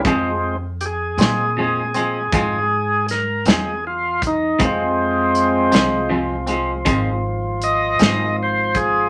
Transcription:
<<
  \new Staff \with { instrumentName = "Tonewheel organ" } { \time 12/8 \key f \minor \tempo 4. = 53 r4 <g' aes'>2. bes'8 aes'8 f'8 ees'8 | r1 ees''4 c''8 aes'8 | }
  \new Staff \with { instrumentName = "Tonewheel organ" } { \clef bass \time 12/8 \key f \minor <f aes c'>8 r1 r4. | <f aes c'>1. | }
  \new Staff \with { instrumentName = "Clean electric guitar" } { \clef bass \time 12/8 \key f \minor <f, f aes c'>8 r4 <f aes c'>8 <f, f aes c'>8 <f aes c'>8 <f, f aes c'>8 r4 <f aes c'>8 r4 | <f, f aes c'>8 r4 <f aes c'>8 <f, f aes c'>8 <f aes c'>8 <f, f aes c'>8 r4 <f aes c'>8 r4 | }
  \new Staff \with { instrumentName = "Upright bass" } { \clef bass \time 12/8 \key f \minor f,4. bes,4. aes,4. e,4. | f,4. c,4. aes,,4. aes,,4. | }
  \new DrumStaff \with { instrumentName = "Drums" } \drummode { \time 12/8 <hh bd>4 hh8 <hh sn>4 hh8 <hh bd>4 <hh sn>8 <hh sn>4 <hh bd>8 | <hh bd>4 hh8 <hh sn>4 hh8 <hh bd>4 hh8 <hh sn>4 <hh bd>8 | }
>>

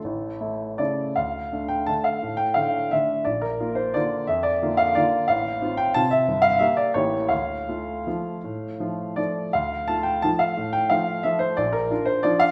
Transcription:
<<
  \new Staff \with { instrumentName = "Grand piano" } { \time 3/4 \key d \minor \tempo 4 = 174 a'2 d''4 | f''4. g''8 a''8 f''8~ | f''8 g''8 f''4 e''4 | d''8 bes'4 c''8 d''4 |
e''8 d''4 f''8 d''4 | f''4. g''8 a''8 e''8~ | e''8 f''8 e''8 d''8 cis''4 | f''2.~ |
f''2 d''4 | f''4 a''8 g''8 a''8 f''8~ | f''8 g''8 f''4 e''8 c''8 | d''8 bes'4 c''8 d''8 f''8 | }
  \new Staff \with { instrumentName = "Grand piano" } { \time 3/4 \key d \minor a,,4 <a e'>4 <cis a e'>4 | d,4 <a d'>4 <d a d'>4 | a,4 <d a d'>4 <d a d'>4 | bes,,4 <bes f'>4 <d bes f'>4 |
f,4 <d bes f'>4 <d bes f'>4 | a,,4 <c' f'>4 <c c' f'>4 | g,,4 <bes g'>4 <a,, e bes g'>4 | d,4 <a f'>4 <f a f'>4 |
a,4 <f a f'>4 <f a f'>4 | d,4 <a f'>4 <f a f'>4 | a,4 <f a f'>4 <f a f'>4 | bes,,4 <d' f'>4 <f d' f'>4 | }
>>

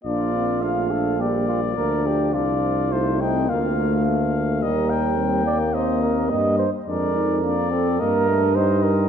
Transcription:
<<
  \new Staff \with { instrumentName = "Trumpet" } { \time 4/4 \key bes \major \tempo 4 = 106 d''4 f''4 d''2 | d''4 c''8 g''8 f''4 f''4 | ees''8 g''4. ees''4. r8 | d''4 d''4 ees''4 ees''4 | }
  \new Staff \with { instrumentName = "Flugelhorn" } { \time 4/4 \key bes \major f'4. a'8 g'8 f'8 bes'8 g'8 | f'4. ees'8 f'4. r8 | bes'4. d''8 c''8 bes'8 ees''8 c''8 | bes'4. a'8 bes'4 c''8 bes'8 | }
  \new Staff \with { instrumentName = "French horn" } { \time 4/4 \key bes \major d'8 c'8 d'4 bes4 d'4~ | d'4 ees'8 c'8 bes8 a8 bes4~ | bes4 g8 bes8 c'4 bes8 r8 | d'8 ees'8 d'8 c'8 bes8 d'8 ees'4 | }
  \new Staff \with { instrumentName = "Trombone" } { \time 4/4 \key bes \major bes4 a4 g4 f4~ | f4 a4 bes8 bes8 a4 | g4 c'8 bes4. g8 r8 | aes4 bes8 c'8 bes8 a8 g4 | }
  \new Staff \with { instrumentName = "Tuba" } { \clef bass \time 4/4 \key bes \major bes,,2. d,4 | c,2 d,2 | ees,2. g,8 r8 | f,2 g,2 | }
>>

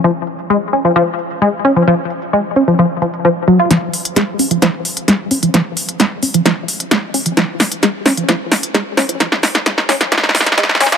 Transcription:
<<
  \new Staff \with { instrumentName = "Synth arpeggio sound" } { \clef bass \time 4/4 \key f \phrygian \tempo 4 = 131 f16 r8. aes16 r16 des'16 f16 f16 r8. aes16 r16 des'16 f16 | f16 r8. aes16 r16 des'16 f16 f16 r16 f16 r16 f16 r16 ges16 f'16 | f16 r8. aes16 r16 des'16 f16 f16 r8. aes16 r16 des'16 f16 | f16 r8. aes16 r16 des'16 f16 f16 r8. aes16 r16 des'16 f16 |
f16 r8. aes16 r16 des'16 f16 f16 r8. aes16 r16 des'16 f16 | f16 r8. aes16 r16 des'16 f16 f16 r8. aes16 r16 des'16 f16 | }
  \new DrumStaff \with { instrumentName = "Drums" } \drummode { \time 4/4 hh8 hh16 hh16 hh8 hh16 hh16 hh8 hh16 hh16 hh8 hh16 hh16 | hh8 hh16 hh16 hh8 hh16 hh16 hh8 hh16 hh16 hh8 hh16 hh16 | <hh sn>8 hho16 hh16 <hh sn>8 hho16 hh16 <hh sn>8 hho16 hh16 <hh sn>8 hho16 hh16 | <hh sn>8 hho16 hh16 <hh sn>8 hho16 hh16 <hh sn>8 hho16 hh16 <hh sn>8 hho16 hh16 |
<hh sn>8 <hho sn>16 hh16 <hh sn>8 <hho sn>16 hh16 <hh sn>8 <hho sn>16 hh16 <hh sn>8 <hho sn>16 hh16 | <hh sn>16 sn16 <hho sn>16 <hh sn>16 <hh sn>16 sn16 <hho sn>16 <hh sn>16 <hh sn>32 sn32 sn32 sn32 <hho sn>32 sn32 <hh sn>32 sn32 <hh sn>32 sn32 sn32 sn32 <hho sn>32 sn32 <hh sn>16 | }
>>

